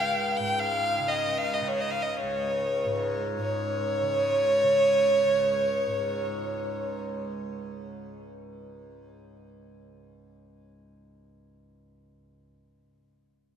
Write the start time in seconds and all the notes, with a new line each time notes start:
Already playing: C#2 G#2 C#3
0.00 F5
0.37 G#2 G5
0.59 F5
1.00 C#3
1.08 D#5
1.38 F5
1.54 D#5
1.61 C#3
1.68 C#5
1.80 D#5
1.91 F5
2.02 D#5
2.16 C#5
2.23 C#2
2.85 G#2
3.38 G#2 C#5
4.02 C#3
4.64 C#3
5.25 C#2
5.87 G#2